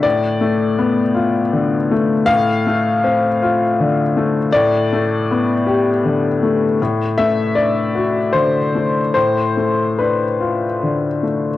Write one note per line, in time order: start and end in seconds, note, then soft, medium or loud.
0.03 2.25 A2 medium
0.03 1.91 D5 medium
0.41 1.01 A3 soft
0.78 1.39 B3 soft
1.14 1.76 F4 soft
1.53 2.14 D3 soft
1.91 2.29 A3 soft
2.26 4.47 A2 medium
2.26 4.51 F5 loud
2.67 3.26 A3 medium
3.04 3.63 C4 soft
3.42 4.01 F4 medium
3.80 4.39 D3 medium
4.17 4.53 A3 soft
4.52 6.76 A2 medium
4.52 6.79 D5 loud
4.93 5.52 A3 medium
5.31 5.90 B3 soft
5.67 6.27 G4 medium
6.05 6.65 D3 soft
6.43 6.80 A3 soft
6.82 9.13 A2 medium
7.18 7.78 A3 soft
7.18 7.55 E5 medium
7.55 8.18 D4 soft
7.55 8.33 D5 medium
7.95 8.58 F#4 soft
8.33 8.99 D3 soft
8.33 9.12 C5 medium
8.75 9.16 A3 soft
9.14 11.57 A2 soft
9.14 9.98 C5 medium
9.57 10.24 A3 soft
9.99 10.66 D4 soft
9.99 11.23 B4 medium
10.40 11.07 F4 soft
10.83 11.49 D3 soft
11.23 11.57 A3 soft